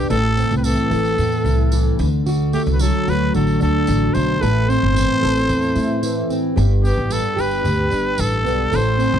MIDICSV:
0, 0, Header, 1, 5, 480
1, 0, Start_track
1, 0, Key_signature, 1, "major"
1, 0, Tempo, 539084
1, 89, Time_signature, 4, 2, 24, 8
1, 8187, End_track
2, 0, Start_track
2, 0, Title_t, "Trumpet"
2, 0, Program_c, 0, 56
2, 90, Note_on_c, 0, 69, 102
2, 479, Note_off_c, 0, 69, 0
2, 508, Note_on_c, 0, 71, 55
2, 575, Note_on_c, 0, 69, 86
2, 588, Note_off_c, 0, 71, 0
2, 1773, Note_off_c, 0, 69, 0
2, 2260, Note_on_c, 0, 67, 81
2, 2339, Note_off_c, 0, 67, 0
2, 2435, Note_on_c, 0, 71, 64
2, 2501, Note_on_c, 0, 69, 101
2, 2515, Note_off_c, 0, 71, 0
2, 2756, Note_on_c, 0, 71, 91
2, 2770, Note_off_c, 0, 69, 0
2, 2979, Note_off_c, 0, 71, 0
2, 2984, Note_on_c, 0, 69, 77
2, 3201, Note_off_c, 0, 69, 0
2, 3230, Note_on_c, 0, 69, 91
2, 3684, Note_on_c, 0, 72, 89
2, 3697, Note_off_c, 0, 69, 0
2, 3934, Note_on_c, 0, 71, 104
2, 3947, Note_off_c, 0, 72, 0
2, 4178, Note_on_c, 0, 72, 107
2, 4191, Note_off_c, 0, 71, 0
2, 5614, Note_off_c, 0, 72, 0
2, 6089, Note_on_c, 0, 67, 82
2, 6342, Note_on_c, 0, 69, 89
2, 6355, Note_off_c, 0, 67, 0
2, 6594, Note_on_c, 0, 71, 93
2, 6607, Note_off_c, 0, 69, 0
2, 7305, Note_on_c, 0, 69, 91
2, 7318, Note_off_c, 0, 71, 0
2, 7796, Note_on_c, 0, 72, 112
2, 7809, Note_off_c, 0, 69, 0
2, 8187, Note_off_c, 0, 72, 0
2, 8187, End_track
3, 0, Start_track
3, 0, Title_t, "Steel-string acoustic guitar"
3, 0, Program_c, 1, 25
3, 0, Note_on_c, 1, 55, 69
3, 0, Note_on_c, 1, 59, 56
3, 0, Note_on_c, 1, 62, 58
3, 89, Note_on_c, 1, 45, 83
3, 94, Note_on_c, 1, 69, 68
3, 129, Note_off_c, 1, 55, 0
3, 131, Note_off_c, 1, 59, 0
3, 132, Note_off_c, 1, 62, 0
3, 331, Note_on_c, 1, 60, 57
3, 576, Note_on_c, 1, 52, 65
3, 812, Note_off_c, 1, 69, 0
3, 816, Note_on_c, 1, 69, 72
3, 1045, Note_off_c, 1, 45, 0
3, 1055, Note_on_c, 1, 45, 89
3, 1294, Note_on_c, 1, 64, 56
3, 1525, Note_off_c, 1, 52, 0
3, 1536, Note_on_c, 1, 52, 65
3, 1773, Note_off_c, 1, 45, 0
3, 1778, Note_on_c, 1, 50, 71
3, 1820, Note_off_c, 1, 60, 0
3, 1821, Note_off_c, 1, 52, 0
3, 1821, Note_off_c, 1, 64, 0
3, 2003, Note_off_c, 1, 50, 0
3, 2012, Note_off_c, 1, 69, 0
3, 2013, Note_on_c, 1, 50, 86
3, 2016, Note_on_c, 1, 66, 67
3, 2257, Note_on_c, 1, 57, 63
3, 2499, Note_on_c, 1, 54, 69
3, 2728, Note_off_c, 1, 66, 0
3, 2738, Note_on_c, 1, 66, 69
3, 2966, Note_off_c, 1, 50, 0
3, 2977, Note_on_c, 1, 50, 88
3, 3207, Note_on_c, 1, 62, 62
3, 3449, Note_off_c, 1, 54, 0
3, 3459, Note_on_c, 1, 54, 66
3, 3681, Note_off_c, 1, 57, 0
3, 3684, Note_on_c, 1, 57, 56
3, 3918, Note_off_c, 1, 50, 0
3, 3922, Note_off_c, 1, 66, 0
3, 3922, Note_on_c, 1, 45, 83
3, 3926, Note_on_c, 1, 69, 76
3, 3977, Note_off_c, 1, 62, 0
3, 3983, Note_off_c, 1, 54, 0
3, 4168, Note_off_c, 1, 57, 0
3, 4171, Note_on_c, 1, 60, 62
3, 4399, Note_on_c, 1, 52, 64
3, 4640, Note_off_c, 1, 69, 0
3, 4651, Note_on_c, 1, 69, 63
3, 4866, Note_off_c, 1, 45, 0
3, 4877, Note_on_c, 1, 45, 77
3, 5121, Note_on_c, 1, 64, 62
3, 5353, Note_off_c, 1, 52, 0
3, 5364, Note_on_c, 1, 52, 63
3, 5597, Note_off_c, 1, 60, 0
3, 5608, Note_on_c, 1, 60, 53
3, 5838, Note_off_c, 1, 69, 0
3, 5840, Note_on_c, 1, 43, 80
3, 5842, Note_on_c, 1, 67, 70
3, 5843, Note_off_c, 1, 45, 0
3, 5894, Note_off_c, 1, 64, 0
3, 5895, Note_off_c, 1, 52, 0
3, 5897, Note_off_c, 1, 60, 0
3, 6087, Note_on_c, 1, 59, 61
3, 6322, Note_on_c, 1, 55, 62
3, 6546, Note_off_c, 1, 67, 0
3, 6557, Note_on_c, 1, 67, 70
3, 6782, Note_off_c, 1, 43, 0
3, 6793, Note_on_c, 1, 43, 88
3, 7032, Note_on_c, 1, 62, 61
3, 7272, Note_off_c, 1, 55, 0
3, 7283, Note_on_c, 1, 55, 72
3, 7507, Note_off_c, 1, 59, 0
3, 7518, Note_on_c, 1, 59, 58
3, 7755, Note_on_c, 1, 45, 82
3, 7761, Note_off_c, 1, 43, 0
3, 7761, Note_off_c, 1, 67, 0
3, 7764, Note_on_c, 1, 69, 77
3, 7809, Note_off_c, 1, 62, 0
3, 7811, Note_off_c, 1, 59, 0
3, 7814, Note_off_c, 1, 55, 0
3, 7992, Note_on_c, 1, 60, 59
3, 8187, Note_off_c, 1, 45, 0
3, 8187, Note_off_c, 1, 60, 0
3, 8187, Note_off_c, 1, 69, 0
3, 8187, End_track
4, 0, Start_track
4, 0, Title_t, "Upright bass"
4, 0, Program_c, 2, 32
4, 89, Note_on_c, 2, 33, 102
4, 385, Note_off_c, 2, 33, 0
4, 456, Note_on_c, 2, 36, 92
4, 650, Note_off_c, 2, 36, 0
4, 809, Note_on_c, 2, 33, 88
4, 1006, Note_off_c, 2, 33, 0
4, 1049, Note_on_c, 2, 40, 83
4, 1246, Note_off_c, 2, 40, 0
4, 1286, Note_on_c, 2, 36, 88
4, 1682, Note_off_c, 2, 36, 0
4, 1774, Note_on_c, 2, 38, 101
4, 2265, Note_off_c, 2, 38, 0
4, 2374, Note_on_c, 2, 36, 93
4, 2570, Note_off_c, 2, 36, 0
4, 2743, Note_on_c, 2, 38, 85
4, 2935, Note_off_c, 2, 38, 0
4, 2989, Note_on_c, 2, 33, 81
4, 3178, Note_off_c, 2, 33, 0
4, 3224, Note_on_c, 2, 38, 76
4, 3415, Note_off_c, 2, 38, 0
4, 3457, Note_on_c, 2, 33, 99
4, 3651, Note_off_c, 2, 33, 0
4, 3697, Note_on_c, 2, 35, 98
4, 3891, Note_off_c, 2, 35, 0
4, 3939, Note_on_c, 2, 33, 98
4, 4231, Note_off_c, 2, 33, 0
4, 4300, Note_on_c, 2, 31, 91
4, 4493, Note_off_c, 2, 31, 0
4, 4657, Note_on_c, 2, 33, 94
4, 4851, Note_off_c, 2, 33, 0
4, 4890, Note_on_c, 2, 40, 81
4, 5087, Note_off_c, 2, 40, 0
4, 5128, Note_on_c, 2, 45, 75
4, 5522, Note_off_c, 2, 45, 0
4, 5852, Note_on_c, 2, 31, 109
4, 6147, Note_off_c, 2, 31, 0
4, 6211, Note_on_c, 2, 33, 91
4, 6407, Note_off_c, 2, 33, 0
4, 6576, Note_on_c, 2, 31, 84
4, 6813, Note_on_c, 2, 38, 87
4, 6826, Note_off_c, 2, 31, 0
4, 7008, Note_off_c, 2, 38, 0
4, 7052, Note_on_c, 2, 31, 80
4, 7248, Note_off_c, 2, 31, 0
4, 7295, Note_on_c, 2, 33, 101
4, 7537, Note_off_c, 2, 33, 0
4, 7537, Note_on_c, 2, 35, 88
4, 7730, Note_off_c, 2, 35, 0
4, 7777, Note_on_c, 2, 33, 97
4, 8069, Note_off_c, 2, 33, 0
4, 8134, Note_on_c, 2, 36, 97
4, 8187, Note_off_c, 2, 36, 0
4, 8187, End_track
5, 0, Start_track
5, 0, Title_t, "Drums"
5, 92, Note_on_c, 9, 54, 58
5, 181, Note_off_c, 9, 54, 0
5, 331, Note_on_c, 9, 54, 46
5, 420, Note_off_c, 9, 54, 0
5, 452, Note_on_c, 9, 54, 30
5, 541, Note_off_c, 9, 54, 0
5, 569, Note_on_c, 9, 54, 88
5, 658, Note_off_c, 9, 54, 0
5, 811, Note_on_c, 9, 54, 46
5, 900, Note_off_c, 9, 54, 0
5, 933, Note_on_c, 9, 54, 35
5, 1022, Note_off_c, 9, 54, 0
5, 1052, Note_on_c, 9, 54, 53
5, 1141, Note_off_c, 9, 54, 0
5, 1175, Note_on_c, 9, 54, 32
5, 1264, Note_off_c, 9, 54, 0
5, 1296, Note_on_c, 9, 54, 46
5, 1385, Note_off_c, 9, 54, 0
5, 1529, Note_on_c, 9, 54, 90
5, 1618, Note_off_c, 9, 54, 0
5, 1771, Note_on_c, 9, 54, 50
5, 1860, Note_off_c, 9, 54, 0
5, 2016, Note_on_c, 9, 54, 56
5, 2105, Note_off_c, 9, 54, 0
5, 2254, Note_on_c, 9, 54, 50
5, 2343, Note_off_c, 9, 54, 0
5, 2372, Note_on_c, 9, 54, 31
5, 2461, Note_off_c, 9, 54, 0
5, 2488, Note_on_c, 9, 54, 93
5, 2577, Note_off_c, 9, 54, 0
5, 2741, Note_on_c, 9, 54, 50
5, 2830, Note_off_c, 9, 54, 0
5, 2977, Note_on_c, 9, 54, 55
5, 3066, Note_off_c, 9, 54, 0
5, 3088, Note_on_c, 9, 54, 29
5, 3177, Note_off_c, 9, 54, 0
5, 3212, Note_on_c, 9, 54, 47
5, 3301, Note_off_c, 9, 54, 0
5, 3446, Note_on_c, 9, 54, 80
5, 3535, Note_off_c, 9, 54, 0
5, 3691, Note_on_c, 9, 54, 51
5, 3780, Note_off_c, 9, 54, 0
5, 3941, Note_on_c, 9, 54, 56
5, 4030, Note_off_c, 9, 54, 0
5, 4183, Note_on_c, 9, 54, 47
5, 4272, Note_off_c, 9, 54, 0
5, 4420, Note_on_c, 9, 54, 86
5, 4509, Note_off_c, 9, 54, 0
5, 4662, Note_on_c, 9, 54, 51
5, 4751, Note_off_c, 9, 54, 0
5, 4772, Note_on_c, 9, 54, 34
5, 4861, Note_off_c, 9, 54, 0
5, 4889, Note_on_c, 9, 54, 52
5, 4978, Note_off_c, 9, 54, 0
5, 5004, Note_on_c, 9, 54, 31
5, 5093, Note_off_c, 9, 54, 0
5, 5124, Note_on_c, 9, 54, 50
5, 5213, Note_off_c, 9, 54, 0
5, 5369, Note_on_c, 9, 54, 87
5, 5458, Note_off_c, 9, 54, 0
5, 5612, Note_on_c, 9, 54, 48
5, 5701, Note_off_c, 9, 54, 0
5, 5857, Note_on_c, 9, 54, 55
5, 5947, Note_off_c, 9, 54, 0
5, 6097, Note_on_c, 9, 54, 52
5, 6186, Note_off_c, 9, 54, 0
5, 6326, Note_on_c, 9, 54, 78
5, 6416, Note_off_c, 9, 54, 0
5, 6573, Note_on_c, 9, 54, 53
5, 6662, Note_off_c, 9, 54, 0
5, 6689, Note_on_c, 9, 54, 37
5, 6778, Note_off_c, 9, 54, 0
5, 6812, Note_on_c, 9, 54, 49
5, 6901, Note_off_c, 9, 54, 0
5, 7046, Note_on_c, 9, 54, 45
5, 7135, Note_off_c, 9, 54, 0
5, 7282, Note_on_c, 9, 54, 89
5, 7371, Note_off_c, 9, 54, 0
5, 7533, Note_on_c, 9, 54, 47
5, 7622, Note_off_c, 9, 54, 0
5, 7769, Note_on_c, 9, 54, 59
5, 7858, Note_off_c, 9, 54, 0
5, 8012, Note_on_c, 9, 54, 44
5, 8101, Note_off_c, 9, 54, 0
5, 8187, End_track
0, 0, End_of_file